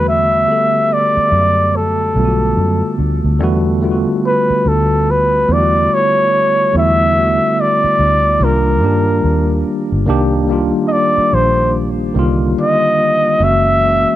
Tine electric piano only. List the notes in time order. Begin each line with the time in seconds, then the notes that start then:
Already playing: D3 G3 A3 B3 F#4
0.47 D3 A3 B3 G4
0.52 A4
2.14 D3 G3 A3 B3
2.19 F4
2.25 F#4
3.39 D3 G3 A3 B3
3.43 F#4
3.80 D3 G3 A3 B3
3.85 F4
3.91 F#4
5.47 D3 G3 A3 B3
5.52 E4
5.59 F#4
6.72 D3 G3 A3 B3
6.77 E4
7.14 D3 G3 A3 B3
7.19 F#4
8.39 D#3 G3 A#3 D4
8.44 F4
8.80 D#3 G3 A#3
8.84 D4 G4
10.06 D#3 G3 A#3 D4
10.10 G4
10.48 D#3 G3 A#3 D4
10.52 F4
12.14 D3 D#3 G3 A#3
12.19 F4
13.39 E3 G#3 A#3 C#4
13.44 F#4
13.81 E3 G#3 A#3 C#4
13.85 F#4